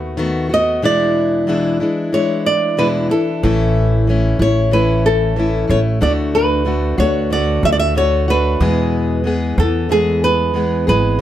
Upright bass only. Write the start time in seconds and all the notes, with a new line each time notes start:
Already playing: D#2
3.43 A1
4.39 A1
5.69 A1
6.02 D2
6.98 D2
7.63 D2
8.61 E2
9.58 E2
10.88 G#1